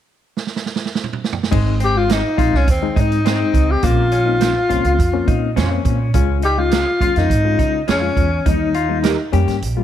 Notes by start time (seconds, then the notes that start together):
0.37 snare
0.47 snare
0.56 snare
0.66 snare
0.76 snare
0.85 snare
0.95 snare
1.04 mid tom
1.13 mid tom
1.24 snare
1.33 floor tom
1.43 snare
1.51 G#1 G#3 C4 D#4, kick, crash
1.80 C4, closed hi-hat
1.84 G4
1.95 G#3 C4 F4
2.09 D#4 G#4 C5 D#5, snare, closed hi-hat
2.38 A#1 G#3 C4 D#4 F4, kick, closed hi-hat
2.53 C2 C#4, snare
2.67 D#2 C4, kick, closed hi-hat
2.82 G#3 C4 D#4
2.96 G#2 D#4, kick, closed hi-hat
3.12 closed hi-hat
3.25 C4 D#4 G#4 C5 D#5, snare, closed hi-hat
3.39 G#3 C4 D#4
3.54 C#2, kick, closed hi-hat
3.71 G4
3.83 A#1 A#3 C4 C#4 F4, kick, closed hi-hat
4.12 C#4, closed hi-hat
4.26 A#3 C4 D#4
4.40 C#4 F4 C5 F5, snare, closed hi-hat
4.69 C2 A#3 C4 C#4 F4, closed hi-hat
4.84 C#2, closed hi-hat
4.99 F2, kick, closed hi-hat
5.13 A#3 C4 C#4
5.28 A#2 D#4, kick, closed hi-hat
5.56 F2 C#4 F4 C5 F5, snare, closed hi-hat
5.71 A#3 C4 C#4
5.85 A#2, kick, closed hi-hat
6.14 C#2 G#3 C#4 F4, kick, closed hi-hat
6.42 D#4 G4, closed hi-hat
6.58 G#3 C#4 F4
6.71 F4 G#4 C#5 F5, snare, closed hi-hat
7.01 D#2 G#3 C#4 F4, kick, closed hi-hat
7.16 F2 D#4, snare, closed hi-hat
7.30 G#1, kick, closed hi-hat
7.45 G#3 C#4 F4
7.59 C#3 D#4, kick, closed hi-hat
7.88 F2 C#4 F4 G#4 C#5 F5, snare, closed hi-hat
8.01 G#3 C#4 F4
8.17 E2, kick, closed hi-hat
8.46 D#2 G3 A#3 D#4, kick, closed hi-hat
8.74 F4, closed hi-hat
8.89 G3 A#3 D#4
9.03 D#4 G4 A#4 D#5, snare, closed hi-hat
9.32 F2 G3 A#3 C#4 G4, closed hi-hat
9.48 G2, snare, closed hi-hat
9.62 A#1, closed hi-hat
9.77 G3 A#3 F4